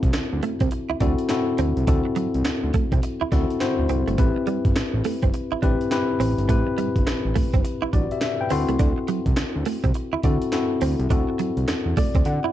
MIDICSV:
0, 0, Header, 1, 6, 480
1, 0, Start_track
1, 0, Tempo, 576923
1, 1560, Time_signature, 4, 2, 24, 8
1, 10419, End_track
2, 0, Start_track
2, 0, Title_t, "Tine electric piano"
2, 0, Program_c, 0, 4
2, 0, Control_c, 0, 64, 127
2, 0, Note_on_c, 0, 60, 90
2, 0, Note_on_c, 0, 64, 78
2, 0, Note_on_c, 0, 66, 81
2, 0, Note_on_c, 0, 69, 95
2, 0, Note_on_c, 0, 81, 68
2, 178, Note_off_c, 0, 60, 0
2, 182, Note_off_c, 0, 64, 0
2, 182, Note_off_c, 0, 66, 0
2, 183, Note_off_c, 0, 69, 0
2, 835, Note_on_c, 0, 60, 87
2, 840, Note_on_c, 0, 64, 78
2, 844, Note_on_c, 0, 66, 83
2, 847, Note_on_c, 0, 69, 96
2, 1020, Note_off_c, 0, 60, 0
2, 1022, Note_off_c, 0, 64, 0
2, 1024, Note_off_c, 0, 66, 0
2, 1026, Note_off_c, 0, 69, 0
2, 1078, Note_on_c, 0, 60, 80
2, 1080, Note_on_c, 0, 64, 73
2, 1084, Note_on_c, 0, 66, 71
2, 1087, Note_on_c, 0, 69, 89
2, 1428, Note_off_c, 0, 60, 0
2, 1429, Note_off_c, 0, 64, 0
2, 1431, Note_off_c, 0, 66, 0
2, 1432, Note_off_c, 0, 69, 0
2, 1558, Note_on_c, 0, 60, 84
2, 1559, Note_on_c, 0, 64, 73
2, 1565, Note_on_c, 0, 66, 72
2, 1566, Note_on_c, 0, 69, 88
2, 2230, Note_off_c, 0, 60, 0
2, 2231, Note_off_c, 0, 64, 0
2, 2234, Note_off_c, 0, 66, 0
2, 2234, Note_off_c, 0, 69, 0
2, 2761, Note_on_c, 0, 60, 85
2, 2763, Note_on_c, 0, 64, 83
2, 2764, Note_on_c, 0, 66, 78
2, 2767, Note_on_c, 0, 69, 95
2, 2943, Note_off_c, 0, 60, 0
2, 2944, Note_off_c, 0, 64, 0
2, 2944, Note_off_c, 0, 66, 0
2, 2946, Note_off_c, 0, 69, 0
2, 2999, Note_on_c, 0, 60, 73
2, 3000, Note_on_c, 0, 64, 68
2, 3005, Note_on_c, 0, 66, 69
2, 3007, Note_on_c, 0, 72, 91
2, 3348, Note_off_c, 0, 60, 0
2, 3349, Note_off_c, 0, 64, 0
2, 3351, Note_off_c, 0, 66, 0
2, 3352, Note_off_c, 0, 72, 0
2, 3479, Note_on_c, 0, 60, 85
2, 3483, Note_on_c, 0, 64, 76
2, 3484, Note_on_c, 0, 67, 76
2, 3488, Note_on_c, 0, 71, 91
2, 3492, Control_c, 0, 64, 0
2, 3495, Note_off_c, 0, 81, 0
2, 3659, Control_c, 0, 64, 127
2, 4151, Note_off_c, 0, 60, 0
2, 4152, Note_off_c, 0, 64, 0
2, 4153, Note_off_c, 0, 67, 0
2, 4155, Note_off_c, 0, 71, 0
2, 4683, Note_on_c, 0, 60, 84
2, 4684, Note_on_c, 0, 64, 77
2, 4689, Note_on_c, 0, 67, 80
2, 4691, Note_on_c, 0, 71, 95
2, 4864, Note_off_c, 0, 60, 0
2, 4864, Note_off_c, 0, 64, 0
2, 4867, Note_off_c, 0, 67, 0
2, 4868, Note_off_c, 0, 71, 0
2, 4917, Note_on_c, 0, 60, 75
2, 4922, Note_on_c, 0, 64, 74
2, 4925, Note_on_c, 0, 67, 71
2, 4928, Note_on_c, 0, 71, 86
2, 5267, Note_off_c, 0, 60, 0
2, 5270, Note_off_c, 0, 64, 0
2, 5271, Note_off_c, 0, 67, 0
2, 5273, Note_off_c, 0, 71, 0
2, 5395, Note_on_c, 0, 60, 82
2, 5401, Note_on_c, 0, 64, 79
2, 5403, Note_on_c, 0, 67, 77
2, 5409, Note_on_c, 0, 71, 93
2, 6068, Note_off_c, 0, 60, 0
2, 6072, Note_off_c, 0, 64, 0
2, 6073, Note_off_c, 0, 67, 0
2, 6075, Note_off_c, 0, 71, 0
2, 6605, Note_on_c, 0, 74, 71
2, 6612, Note_on_c, 0, 66, 60
2, 6744, Note_off_c, 0, 74, 0
2, 6748, Note_off_c, 0, 66, 0
2, 6754, Note_on_c, 0, 76, 68
2, 6760, Note_on_c, 0, 67, 54
2, 6841, Note_off_c, 0, 76, 0
2, 6851, Note_on_c, 0, 76, 71
2, 6983, Note_off_c, 0, 67, 0
2, 6995, Note_on_c, 0, 79, 71
2, 7001, Note_on_c, 0, 71, 57
2, 7069, Note_off_c, 0, 76, 0
2, 7079, Note_on_c, 0, 60, 87
2, 7084, Note_on_c, 0, 64, 80
2, 7084, Note_on_c, 0, 84, 78
2, 7086, Note_on_c, 0, 66, 78
2, 7089, Control_c, 0, 64, 0
2, 7091, Note_on_c, 0, 69, 94
2, 7220, Note_off_c, 0, 79, 0
2, 7223, Note_off_c, 0, 71, 0
2, 7252, Control_c, 0, 64, 127
2, 7305, Note_off_c, 0, 84, 0
2, 7859, Note_off_c, 0, 60, 0
2, 7862, Note_off_c, 0, 64, 0
2, 7863, Note_off_c, 0, 66, 0
2, 7865, Note_off_c, 0, 69, 0
2, 8517, Note_on_c, 0, 60, 82
2, 8520, Note_on_c, 0, 64, 75
2, 8524, Note_on_c, 0, 66, 78
2, 8525, Note_on_c, 0, 69, 91
2, 8701, Note_off_c, 0, 60, 0
2, 8702, Note_off_c, 0, 64, 0
2, 8704, Note_off_c, 0, 66, 0
2, 8705, Note_off_c, 0, 69, 0
2, 8755, Note_on_c, 0, 60, 72
2, 8758, Note_on_c, 0, 64, 75
2, 8761, Note_on_c, 0, 66, 68
2, 8767, Note_on_c, 0, 69, 84
2, 9106, Note_off_c, 0, 60, 0
2, 9108, Note_off_c, 0, 64, 0
2, 9109, Note_off_c, 0, 66, 0
2, 9112, Note_off_c, 0, 69, 0
2, 9238, Note_on_c, 0, 60, 85
2, 9242, Note_on_c, 0, 64, 70
2, 9246, Note_on_c, 0, 66, 80
2, 9248, Note_on_c, 0, 69, 85
2, 9910, Note_off_c, 0, 60, 0
2, 9912, Note_off_c, 0, 64, 0
2, 9914, Note_off_c, 0, 66, 0
2, 9915, Note_off_c, 0, 69, 0
2, 9963, Note_on_c, 0, 74, 80
2, 10185, Note_off_c, 0, 74, 0
2, 10198, Note_on_c, 0, 78, 77
2, 10419, Note_off_c, 0, 78, 0
2, 10419, End_track
3, 0, Start_track
3, 0, Title_t, "Clean electric guitar"
3, 0, Program_c, 1, 27
3, 357, Note_on_c, 1, 57, 70
3, 443, Note_off_c, 1, 57, 0
3, 506, Note_on_c, 1, 60, 72
3, 559, Note_off_c, 1, 60, 0
3, 746, Note_on_c, 1, 64, 78
3, 799, Note_off_c, 1, 64, 0
3, 839, Note_on_c, 1, 62, 75
3, 925, Note_off_c, 1, 62, 0
3, 1321, Note_on_c, 1, 60, 81
3, 1406, Note_off_c, 1, 60, 0
3, 1564, Note_on_c, 1, 62, 81
3, 1648, Note_off_c, 1, 62, 0
3, 1799, Note_on_c, 1, 54, 78
3, 1885, Note_off_c, 1, 54, 0
3, 2282, Note_on_c, 1, 57, 80
3, 2367, Note_off_c, 1, 57, 0
3, 2434, Note_on_c, 1, 60, 75
3, 2485, Note_off_c, 1, 60, 0
3, 2672, Note_on_c, 1, 64, 71
3, 2724, Note_off_c, 1, 64, 0
3, 2762, Note_on_c, 1, 62, 82
3, 2847, Note_off_c, 1, 62, 0
3, 3241, Note_on_c, 1, 60, 77
3, 3326, Note_off_c, 1, 60, 0
3, 3391, Note_on_c, 1, 57, 66
3, 3442, Note_off_c, 1, 57, 0
3, 3479, Note_on_c, 1, 57, 78
3, 3565, Note_off_c, 1, 57, 0
3, 3720, Note_on_c, 1, 55, 80
3, 3806, Note_off_c, 1, 55, 0
3, 4202, Note_on_c, 1, 57, 71
3, 4287, Note_off_c, 1, 57, 0
3, 4351, Note_on_c, 1, 60, 75
3, 4402, Note_off_c, 1, 60, 0
3, 4591, Note_on_c, 1, 64, 80
3, 4643, Note_off_c, 1, 64, 0
3, 4678, Note_on_c, 1, 62, 74
3, 4764, Note_off_c, 1, 62, 0
3, 5158, Note_on_c, 1, 60, 82
3, 5244, Note_off_c, 1, 60, 0
3, 5398, Note_on_c, 1, 57, 80
3, 5484, Note_off_c, 1, 57, 0
3, 5639, Note_on_c, 1, 55, 77
3, 5725, Note_off_c, 1, 55, 0
3, 6119, Note_on_c, 1, 57, 82
3, 6205, Note_off_c, 1, 57, 0
3, 6272, Note_on_c, 1, 60, 81
3, 6323, Note_off_c, 1, 60, 0
3, 6507, Note_on_c, 1, 64, 82
3, 6560, Note_off_c, 1, 64, 0
3, 6598, Note_on_c, 1, 62, 74
3, 6684, Note_off_c, 1, 62, 0
3, 7077, Note_on_c, 1, 60, 79
3, 7163, Note_off_c, 1, 60, 0
3, 7227, Note_on_c, 1, 57, 67
3, 7279, Note_off_c, 1, 57, 0
3, 7317, Note_on_c, 1, 62, 84
3, 7404, Note_off_c, 1, 62, 0
3, 7558, Note_on_c, 1, 54, 84
3, 7644, Note_off_c, 1, 54, 0
3, 8039, Note_on_c, 1, 57, 68
3, 8125, Note_off_c, 1, 57, 0
3, 8185, Note_on_c, 1, 60, 69
3, 8238, Note_off_c, 1, 60, 0
3, 8428, Note_on_c, 1, 64, 80
3, 8480, Note_off_c, 1, 64, 0
3, 8520, Note_on_c, 1, 62, 71
3, 8606, Note_off_c, 1, 62, 0
3, 9000, Note_on_c, 1, 60, 81
3, 9086, Note_off_c, 1, 60, 0
3, 9240, Note_on_c, 1, 62, 88
3, 9326, Note_off_c, 1, 62, 0
3, 9480, Note_on_c, 1, 54, 80
3, 9566, Note_off_c, 1, 54, 0
3, 9960, Note_on_c, 1, 57, 74
3, 10046, Note_off_c, 1, 57, 0
3, 10112, Note_on_c, 1, 60, 74
3, 10164, Note_off_c, 1, 60, 0
3, 10352, Note_on_c, 1, 64, 78
3, 10403, Note_off_c, 1, 64, 0
3, 10419, End_track
4, 0, Start_track
4, 0, Title_t, "Analog synth bass"
4, 0, Program_c, 2, 38
4, 24, Note_on_c, 2, 36, 97
4, 98, Note_off_c, 2, 36, 0
4, 121, Note_on_c, 2, 38, 48
4, 180, Note_off_c, 2, 38, 0
4, 272, Note_on_c, 2, 38, 92
4, 343, Note_off_c, 2, 38, 0
4, 506, Note_on_c, 2, 36, 83
4, 579, Note_off_c, 2, 36, 0
4, 751, Note_on_c, 2, 38, 50
4, 787, Note_off_c, 2, 38, 0
4, 836, Note_on_c, 2, 38, 93
4, 956, Note_off_c, 2, 38, 0
4, 1322, Note_on_c, 2, 38, 89
4, 1440, Note_off_c, 2, 38, 0
4, 1469, Note_on_c, 2, 36, 88
4, 1541, Note_off_c, 2, 36, 0
4, 1559, Note_on_c, 2, 38, 101
4, 1678, Note_off_c, 2, 38, 0
4, 1954, Note_on_c, 2, 36, 81
4, 2024, Note_off_c, 2, 36, 0
4, 2042, Note_on_c, 2, 38, 44
4, 2101, Note_off_c, 2, 38, 0
4, 2191, Note_on_c, 2, 38, 89
4, 2263, Note_off_c, 2, 38, 0
4, 2429, Note_on_c, 2, 36, 91
4, 2501, Note_off_c, 2, 36, 0
4, 2672, Note_on_c, 2, 38, 50
4, 2708, Note_off_c, 2, 38, 0
4, 2762, Note_on_c, 2, 38, 88
4, 2880, Note_off_c, 2, 38, 0
4, 3153, Note_on_c, 2, 38, 89
4, 3224, Note_off_c, 2, 38, 0
4, 3246, Note_on_c, 2, 36, 96
4, 3362, Note_off_c, 2, 36, 0
4, 3393, Note_on_c, 2, 31, 81
4, 3464, Note_off_c, 2, 31, 0
4, 3479, Note_on_c, 2, 33, 101
4, 3598, Note_off_c, 2, 33, 0
4, 3868, Note_on_c, 2, 31, 86
4, 3941, Note_off_c, 2, 31, 0
4, 3960, Note_on_c, 2, 33, 45
4, 4019, Note_off_c, 2, 33, 0
4, 4107, Note_on_c, 2, 33, 98
4, 4180, Note_off_c, 2, 33, 0
4, 4347, Note_on_c, 2, 31, 92
4, 4420, Note_off_c, 2, 31, 0
4, 4591, Note_on_c, 2, 33, 46
4, 4627, Note_off_c, 2, 33, 0
4, 4682, Note_on_c, 2, 33, 94
4, 4799, Note_off_c, 2, 33, 0
4, 5160, Note_on_c, 2, 33, 94
4, 5278, Note_off_c, 2, 33, 0
4, 5308, Note_on_c, 2, 31, 87
4, 5380, Note_off_c, 2, 31, 0
4, 5401, Note_on_c, 2, 33, 101
4, 5519, Note_off_c, 2, 33, 0
4, 5789, Note_on_c, 2, 31, 84
4, 5861, Note_off_c, 2, 31, 0
4, 5881, Note_on_c, 2, 33, 47
4, 5940, Note_off_c, 2, 33, 0
4, 6034, Note_on_c, 2, 33, 96
4, 6104, Note_off_c, 2, 33, 0
4, 6270, Note_on_c, 2, 31, 85
4, 6342, Note_off_c, 2, 31, 0
4, 6511, Note_on_c, 2, 33, 52
4, 6547, Note_off_c, 2, 33, 0
4, 6600, Note_on_c, 2, 33, 90
4, 6718, Note_off_c, 2, 33, 0
4, 7083, Note_on_c, 2, 38, 99
4, 7200, Note_off_c, 2, 38, 0
4, 7228, Note_on_c, 2, 36, 82
4, 7300, Note_off_c, 2, 36, 0
4, 7317, Note_on_c, 2, 38, 101
4, 7436, Note_off_c, 2, 38, 0
4, 7704, Note_on_c, 2, 36, 86
4, 7778, Note_off_c, 2, 36, 0
4, 7798, Note_on_c, 2, 38, 46
4, 7858, Note_off_c, 2, 38, 0
4, 7950, Note_on_c, 2, 38, 84
4, 8022, Note_off_c, 2, 38, 0
4, 8185, Note_on_c, 2, 36, 92
4, 8259, Note_off_c, 2, 36, 0
4, 8424, Note_on_c, 2, 38, 47
4, 8462, Note_off_c, 2, 38, 0
4, 8518, Note_on_c, 2, 38, 90
4, 8637, Note_off_c, 2, 38, 0
4, 8999, Note_on_c, 2, 38, 90
4, 9118, Note_off_c, 2, 38, 0
4, 9147, Note_on_c, 2, 36, 96
4, 9220, Note_off_c, 2, 36, 0
4, 9238, Note_on_c, 2, 38, 91
4, 9357, Note_off_c, 2, 38, 0
4, 9625, Note_on_c, 2, 36, 82
4, 9699, Note_off_c, 2, 36, 0
4, 9718, Note_on_c, 2, 40, 47
4, 9778, Note_off_c, 2, 40, 0
4, 9865, Note_on_c, 2, 40, 93
4, 9939, Note_off_c, 2, 40, 0
4, 10106, Note_on_c, 2, 38, 86
4, 10180, Note_off_c, 2, 38, 0
4, 10200, Note_on_c, 2, 50, 98
4, 10318, Note_off_c, 2, 50, 0
4, 10419, End_track
5, 0, Start_track
5, 0, Title_t, "Muted clean electric guitar strokes"
5, 118, Note_on_c, 9, 29, 46
5, 202, Note_off_c, 9, 29, 0
5, 599, Note_on_c, 9, 29, 44
5, 682, Note_off_c, 9, 29, 0
5, 1708, Note_on_c, 9, 29, 48
5, 1792, Note_off_c, 9, 29, 0
5, 2042, Note_on_c, 9, 29, 45
5, 2126, Note_off_c, 9, 29, 0
5, 2524, Note_on_c, 9, 29, 43
5, 2607, Note_off_c, 9, 29, 0
5, 3001, Note_on_c, 9, 29, 42
5, 3084, Note_off_c, 9, 29, 0
5, 3630, Note_on_c, 9, 29, 48
5, 3713, Note_off_c, 9, 29, 0
5, 3961, Note_on_c, 9, 29, 45
5, 4045, Note_off_c, 9, 29, 0
5, 4444, Note_on_c, 9, 29, 42
5, 4528, Note_off_c, 9, 29, 0
5, 5547, Note_on_c, 9, 29, 46
5, 5630, Note_off_c, 9, 29, 0
5, 5878, Note_on_c, 9, 29, 48
5, 5962, Note_off_c, 9, 29, 0
5, 6361, Note_on_c, 9, 29, 42
5, 6444, Note_off_c, 9, 29, 0
5, 6839, Note_on_c, 9, 29, 42
5, 6922, Note_off_c, 9, 29, 0
5, 7470, Note_on_c, 9, 29, 46
5, 7554, Note_off_c, 9, 29, 0
5, 7797, Note_on_c, 9, 29, 46
5, 7880, Note_off_c, 9, 29, 0
5, 8282, Note_on_c, 9, 29, 41
5, 8365, Note_off_c, 9, 29, 0
5, 9390, Note_on_c, 9, 29, 43
5, 9473, Note_off_c, 9, 29, 0
5, 9720, Note_on_c, 9, 29, 48
5, 9803, Note_off_c, 9, 29, 0
5, 10201, Note_on_c, 9, 29, 45
5, 10285, Note_off_c, 9, 29, 0
5, 10419, End_track
6, 0, Start_track
6, 0, Title_t, "Drums"
6, 24, Note_on_c, 9, 36, 82
6, 27, Note_on_c, 9, 42, 51
6, 107, Note_off_c, 9, 36, 0
6, 110, Note_off_c, 9, 42, 0
6, 112, Note_on_c, 9, 42, 79
6, 113, Note_on_c, 9, 38, 121
6, 115, Note_on_c, 9, 39, 93
6, 196, Note_off_c, 9, 38, 0
6, 196, Note_off_c, 9, 42, 0
6, 198, Note_off_c, 9, 39, 0
6, 355, Note_on_c, 9, 42, 77
6, 438, Note_off_c, 9, 42, 0
6, 501, Note_on_c, 9, 42, 54
6, 504, Note_on_c, 9, 36, 90
6, 584, Note_off_c, 9, 42, 0
6, 587, Note_off_c, 9, 36, 0
6, 590, Note_on_c, 9, 42, 80
6, 673, Note_off_c, 9, 42, 0
6, 835, Note_on_c, 9, 42, 71
6, 836, Note_on_c, 9, 36, 90
6, 919, Note_off_c, 9, 36, 0
6, 919, Note_off_c, 9, 42, 0
6, 986, Note_on_c, 9, 42, 41
6, 1069, Note_off_c, 9, 42, 0
6, 1074, Note_on_c, 9, 38, 102
6, 1076, Note_on_c, 9, 42, 81
6, 1077, Note_on_c, 9, 39, 85
6, 1158, Note_off_c, 9, 38, 0
6, 1159, Note_off_c, 9, 42, 0
6, 1160, Note_off_c, 9, 39, 0
6, 1316, Note_on_c, 9, 42, 83
6, 1399, Note_off_c, 9, 42, 0
6, 1472, Note_on_c, 9, 42, 46
6, 1555, Note_off_c, 9, 42, 0
6, 1559, Note_on_c, 9, 36, 123
6, 1559, Note_on_c, 9, 42, 93
6, 1642, Note_off_c, 9, 36, 0
6, 1642, Note_off_c, 9, 42, 0
6, 1797, Note_on_c, 9, 42, 65
6, 1880, Note_off_c, 9, 42, 0
6, 1950, Note_on_c, 9, 42, 51
6, 2033, Note_off_c, 9, 42, 0
6, 2038, Note_on_c, 9, 42, 80
6, 2039, Note_on_c, 9, 38, 123
6, 2041, Note_on_c, 9, 39, 94
6, 2122, Note_off_c, 9, 38, 0
6, 2122, Note_off_c, 9, 42, 0
6, 2124, Note_off_c, 9, 39, 0
6, 2277, Note_on_c, 9, 42, 76
6, 2281, Note_on_c, 9, 36, 98
6, 2360, Note_off_c, 9, 42, 0
6, 2364, Note_off_c, 9, 36, 0
6, 2429, Note_on_c, 9, 36, 99
6, 2430, Note_on_c, 9, 42, 54
6, 2512, Note_off_c, 9, 36, 0
6, 2513, Note_off_c, 9, 42, 0
6, 2521, Note_on_c, 9, 42, 84
6, 2604, Note_off_c, 9, 42, 0
6, 2760, Note_on_c, 9, 38, 64
6, 2762, Note_on_c, 9, 36, 89
6, 2763, Note_on_c, 9, 42, 66
6, 2843, Note_off_c, 9, 38, 0
6, 2845, Note_off_c, 9, 36, 0
6, 2846, Note_off_c, 9, 42, 0
6, 2916, Note_on_c, 9, 42, 38
6, 2999, Note_off_c, 9, 42, 0
6, 3002, Note_on_c, 9, 38, 105
6, 3003, Note_on_c, 9, 42, 80
6, 3004, Note_on_c, 9, 39, 89
6, 3085, Note_off_c, 9, 38, 0
6, 3087, Note_off_c, 9, 39, 0
6, 3087, Note_off_c, 9, 42, 0
6, 3238, Note_on_c, 9, 42, 82
6, 3321, Note_off_c, 9, 42, 0
6, 3392, Note_on_c, 9, 42, 41
6, 3475, Note_off_c, 9, 42, 0
6, 3479, Note_on_c, 9, 42, 90
6, 3480, Note_on_c, 9, 36, 123
6, 3563, Note_off_c, 9, 36, 0
6, 3563, Note_off_c, 9, 42, 0
6, 3717, Note_on_c, 9, 42, 70
6, 3800, Note_off_c, 9, 42, 0
6, 3868, Note_on_c, 9, 36, 82
6, 3868, Note_on_c, 9, 42, 49
6, 3951, Note_off_c, 9, 36, 0
6, 3951, Note_off_c, 9, 42, 0
6, 3961, Note_on_c, 9, 38, 116
6, 3961, Note_on_c, 9, 42, 82
6, 3963, Note_on_c, 9, 39, 97
6, 4044, Note_off_c, 9, 38, 0
6, 4044, Note_off_c, 9, 42, 0
6, 4047, Note_off_c, 9, 39, 0
6, 4196, Note_on_c, 9, 46, 75
6, 4280, Note_off_c, 9, 46, 0
6, 4346, Note_on_c, 9, 42, 50
6, 4348, Note_on_c, 9, 36, 87
6, 4430, Note_off_c, 9, 42, 0
6, 4431, Note_off_c, 9, 36, 0
6, 4440, Note_on_c, 9, 42, 83
6, 4523, Note_off_c, 9, 42, 0
6, 4681, Note_on_c, 9, 36, 89
6, 4682, Note_on_c, 9, 42, 64
6, 4764, Note_off_c, 9, 36, 0
6, 4765, Note_off_c, 9, 42, 0
6, 4834, Note_on_c, 9, 42, 39
6, 4917, Note_off_c, 9, 42, 0
6, 4921, Note_on_c, 9, 38, 102
6, 4922, Note_on_c, 9, 42, 78
6, 4923, Note_on_c, 9, 39, 87
6, 5004, Note_off_c, 9, 38, 0
6, 5005, Note_off_c, 9, 42, 0
6, 5006, Note_off_c, 9, 39, 0
6, 5162, Note_on_c, 9, 46, 76
6, 5245, Note_off_c, 9, 46, 0
6, 5312, Note_on_c, 9, 42, 46
6, 5395, Note_off_c, 9, 42, 0
6, 5400, Note_on_c, 9, 36, 112
6, 5401, Note_on_c, 9, 42, 90
6, 5483, Note_off_c, 9, 36, 0
6, 5484, Note_off_c, 9, 42, 0
6, 5641, Note_on_c, 9, 42, 70
6, 5725, Note_off_c, 9, 42, 0
6, 5789, Note_on_c, 9, 36, 77
6, 5792, Note_on_c, 9, 42, 52
6, 5872, Note_off_c, 9, 36, 0
6, 5875, Note_off_c, 9, 42, 0
6, 5883, Note_on_c, 9, 42, 80
6, 5884, Note_on_c, 9, 38, 119
6, 5886, Note_on_c, 9, 39, 98
6, 5967, Note_off_c, 9, 38, 0
6, 5967, Note_off_c, 9, 42, 0
6, 5969, Note_off_c, 9, 39, 0
6, 6121, Note_on_c, 9, 46, 73
6, 6122, Note_on_c, 9, 36, 91
6, 6204, Note_off_c, 9, 46, 0
6, 6205, Note_off_c, 9, 36, 0
6, 6269, Note_on_c, 9, 36, 93
6, 6272, Note_on_c, 9, 42, 49
6, 6352, Note_off_c, 9, 36, 0
6, 6355, Note_off_c, 9, 42, 0
6, 6362, Note_on_c, 9, 42, 85
6, 6445, Note_off_c, 9, 42, 0
6, 6599, Note_on_c, 9, 36, 89
6, 6599, Note_on_c, 9, 42, 73
6, 6682, Note_off_c, 9, 36, 0
6, 6682, Note_off_c, 9, 42, 0
6, 6749, Note_on_c, 9, 42, 43
6, 6832, Note_off_c, 9, 42, 0
6, 6834, Note_on_c, 9, 38, 113
6, 6835, Note_on_c, 9, 42, 73
6, 6836, Note_on_c, 9, 39, 89
6, 6917, Note_off_c, 9, 38, 0
6, 6918, Note_off_c, 9, 42, 0
6, 6919, Note_off_c, 9, 39, 0
6, 7074, Note_on_c, 9, 46, 84
6, 7157, Note_off_c, 9, 46, 0
6, 7227, Note_on_c, 9, 42, 42
6, 7310, Note_off_c, 9, 42, 0
6, 7315, Note_on_c, 9, 42, 89
6, 7318, Note_on_c, 9, 36, 123
6, 7398, Note_off_c, 9, 42, 0
6, 7401, Note_off_c, 9, 36, 0
6, 7555, Note_on_c, 9, 42, 73
6, 7638, Note_off_c, 9, 42, 0
6, 7704, Note_on_c, 9, 36, 89
6, 7704, Note_on_c, 9, 42, 51
6, 7787, Note_off_c, 9, 36, 0
6, 7787, Note_off_c, 9, 42, 0
6, 7794, Note_on_c, 9, 38, 120
6, 7794, Note_on_c, 9, 42, 84
6, 7796, Note_on_c, 9, 39, 98
6, 7877, Note_off_c, 9, 38, 0
6, 7877, Note_off_c, 9, 42, 0
6, 7880, Note_off_c, 9, 39, 0
6, 8033, Note_on_c, 9, 46, 73
6, 8116, Note_off_c, 9, 46, 0
6, 8185, Note_on_c, 9, 36, 91
6, 8187, Note_on_c, 9, 42, 52
6, 8269, Note_off_c, 9, 36, 0
6, 8271, Note_off_c, 9, 42, 0
6, 8273, Note_on_c, 9, 42, 85
6, 8356, Note_off_c, 9, 42, 0
6, 8515, Note_on_c, 9, 42, 70
6, 8517, Note_on_c, 9, 36, 87
6, 8598, Note_off_c, 9, 42, 0
6, 8600, Note_off_c, 9, 36, 0
6, 8667, Note_on_c, 9, 42, 42
6, 8750, Note_off_c, 9, 42, 0
6, 8756, Note_on_c, 9, 38, 101
6, 8757, Note_on_c, 9, 42, 84
6, 8758, Note_on_c, 9, 39, 83
6, 8839, Note_off_c, 9, 38, 0
6, 8841, Note_off_c, 9, 39, 0
6, 8841, Note_off_c, 9, 42, 0
6, 8995, Note_on_c, 9, 46, 81
6, 9078, Note_off_c, 9, 46, 0
6, 9149, Note_on_c, 9, 42, 45
6, 9232, Note_off_c, 9, 42, 0
6, 9238, Note_on_c, 9, 36, 120
6, 9239, Note_on_c, 9, 42, 95
6, 9321, Note_off_c, 9, 36, 0
6, 9322, Note_off_c, 9, 42, 0
6, 9477, Note_on_c, 9, 42, 76
6, 9561, Note_off_c, 9, 42, 0
6, 9627, Note_on_c, 9, 42, 50
6, 9710, Note_off_c, 9, 42, 0
6, 9719, Note_on_c, 9, 38, 116
6, 9719, Note_on_c, 9, 42, 88
6, 9721, Note_on_c, 9, 39, 93
6, 9802, Note_off_c, 9, 38, 0
6, 9802, Note_off_c, 9, 42, 0
6, 9804, Note_off_c, 9, 39, 0
6, 9958, Note_on_c, 9, 46, 79
6, 9959, Note_on_c, 9, 36, 92
6, 10042, Note_off_c, 9, 36, 0
6, 10042, Note_off_c, 9, 46, 0
6, 10106, Note_on_c, 9, 36, 98
6, 10106, Note_on_c, 9, 42, 52
6, 10189, Note_off_c, 9, 36, 0
6, 10189, Note_off_c, 9, 42, 0
6, 10193, Note_on_c, 9, 42, 80
6, 10276, Note_off_c, 9, 42, 0
6, 10419, End_track
0, 0, End_of_file